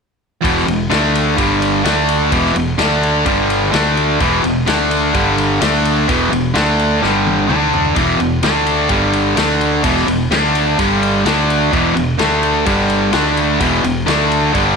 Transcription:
0.42 E1 E2 B2 E3, kick, ride
0.57 snare
0.67 E1 E2 B2, ride
0.90 D2 D3 A3 D4, snare, ride
1.15 ride
1.36 G1 G2 D3 G3, kick, ride
1.62 ride
1.83 D2 D3 A3 D4, snare, ride
2.09 ride
2.31 E1 E2 B2 E3, kick, ride
2.46 snare
2.54 E1 E2 B2, ride
2.78 D2 D3 A3 D4, snare, ride
3.03 ride
3.25 G1 G2 D3 G3, kick, ride
3.50 ride
3.72 D2 D3 A3 D4, snare, ride
3.97 ride
4.20 E1 E2 B2 E3, kick, ride
4.44 E1 E2 B2, ride
4.66 D2 D3 A3 D4, snare, ride
4.91 ride
5.14 G1 G2 D3 G3, kick, ride
5.38 ride
5.60 D2 D3 A3 D4, snare, ride
5.85 ride
6.08 E1 E2 B2 E3, kick, ride
6.31 E1 E2 B2, ride
6.54 D2 D3 A3 D4, snare, ride
6.79 ride
7.02 G1 G2 D3 G3, snare
7.26 high tom
7.39 high tom
7.49 D2 D3 A3 D4, mid tom
7.73 floor tom
7.85 floor tom
7.95 E1 E2 B2 E3, kick, ride
8.19 E1 E2 B2, ride
8.43 D2 D3 A3 D4, snare, ride
8.66 ride
8.89 G1 G2 D3 G3, kick, ride
9.13 ride
9.36 D2 D3 A3 D4, snare, ride
9.61 ride
9.84 E1 E2 B2 E3, kick, ride
9.97 snare
10.07 E1 E2 B2, ride
10.31 D2 D3 A3 D4, snare, ride
10.55 ride
10.79 G1 G2 D3 G3, kick, ride
11.03 ride
11.25 D2 D3 A3 D4, snare, ride
11.50 ride
11.72 E1 E2 B2 E3, kick, ride
11.95 E1 E2 B2, ride
12.19 D2 D3 A3 D4, snare, ride
12.43 ride
12.66 G1 G2 D3 G3, kick, ride
12.90 ride
13.12 D2 D3 A3 D4, snare, ride
13.37 ride
13.59 E1 E2 B2 E3, kick, ride
13.84 E1 E2 B2, ride
14.06 D2 D3 A3 D4, snare, ride
14.31 ride
14.53 G1 G2 D3 G3, kick, ride

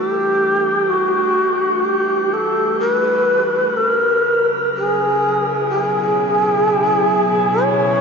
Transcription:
Already playing: E3 G3 A3 D4 F#4
0.07 G4
0.90 F#4
1.85 G4
2.33 A4
2.80 A#4
2.91 B4
3.75 C#3 A#4
4.47 F#3
4.78 G#4
5.26 E4
5.70 G4
5.79 B2 G#4
7.24 G#4
7.64 C#5

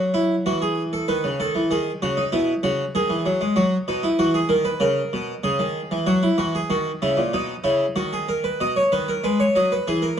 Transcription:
Already playing: F#3
0.14 E4
0.46 E3 F#4
0.62 G#4
0.93 A4
1.08 D#3 B4
1.24 C#3
1.40 D#3 A4
1.55 E3
1.71 D#3 G#4
2.02 C#3 F#4
2.17 D#4
2.32 B2 E4
2.63 C#3 F#4
2.95 D#3 G#4
3.10 E3
3.26 F#3
3.41 G#3
3.56 F#3 F#4
3.88 B2 D#4
4.03 E4
4.19 E3 F#4
4.34 G#4
4.49 D#3 A#4
4.65 B4
4.80 C#3 A#4
5.13 B2
5.44 C#3 G#4
5.59 D#3
5.91 E3
6.06 F#3 F#4
6.23 E4
6.38 E3 F#4
6.55 G#4
6.70 D#3 F#4
7.02 C#3 E4
7.17 A#2
7.34 B2 D#4
7.64 C#3 E4
7.96 D#3 F#4
8.13 G#4
8.28 A#4
8.44 B4
8.61 B2 D#5
8.76 C#5
8.92 D#3 B4
9.08 A#4
9.24 G#3 B4
9.40 C#5
9.55 F#3 D#5
9.72 B4
9.87 E3 G#4
10.02 A#4

